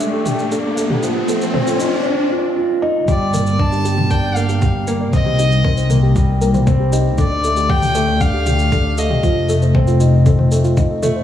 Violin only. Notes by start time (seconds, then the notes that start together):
3.09 D5
3.60 A5
4.11 G5
4.36 F5
5.13 D#5
7.19 D5
7.70 G5
8.22 F5
8.98 D#5